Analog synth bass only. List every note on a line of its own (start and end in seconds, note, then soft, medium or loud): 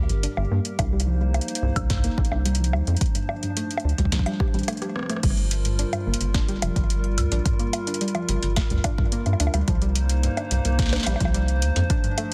0.00 0.11 D2 medium
0.09 0.27 G1 loud
0.37 0.46 G1 loud
0.51 0.60 G2 medium
0.79 1.40 C2 loud
1.62 1.71 C2 medium
1.76 2.09 C2 medium
2.18 2.26 A#1 medium
2.32 2.75 C2 medium
2.73 2.82 D2 medium
2.87 2.96 F2 medium
3.85 3.93 D2 medium
3.98 4.16 D2 medium
4.54 4.63 A1 loud
5.23 5.84 G1 loud
6.07 6.15 G1 medium
6.21 6.54 G1 medium
6.62 6.71 F1 medium
6.76 7.19 G1 medium
7.18 7.26 D2 medium
7.32 7.40 A#1 medium
8.29 8.38 G1 medium
8.43 8.60 G1 medium
8.71 8.79 D2 medium
9.26 9.35 G2 medium
9.40 9.49 D2 medium
9.54 9.63 D2 loud
9.68 10.29 C2 loud
10.51 10.60 C2 medium
10.65 10.98 C2 medium
11.07 11.15 A#1 loud
11.21 11.64 C2 medium
11.62 11.71 D2 medium
11.76 11.85 F2 loud